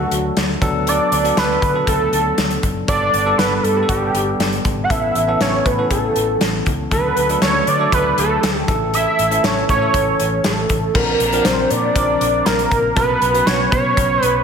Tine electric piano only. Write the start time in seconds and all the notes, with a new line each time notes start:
Already playing: F#3 A3 D4 A4
0.61 F#3 B3 D4 A4
1.24 F#3 B3 D4 A4
1.74 F#3 B3 D4 A4
2.87 G3 B3 D4 A4
3.25 G3 B3 D4 A4
3.75 G3 B3 D4 G4
3.83 A4
4.89 E3 B3 C#4 A4
5.27 E3 B3 C#4 A4
5.78 E3 B3 C#4 A4
6.91 F#3 A3 D4 A4
7.29 F#3 A3 D4 A4
7.79 F#3 A3 D4 A4
8.67 E3 A3 C#4 A4
9.30 E3 A3 C#4 A4
9.81 E3 A3 C#4 A4
10.94 F3 C4 D4 A#4
11.33 F3 C4 D4 A#4
11.96 F3 C4 D4 A#4
12.96 F#3 B3 C#4 B4
13.34 F#3 B3 C#4 B4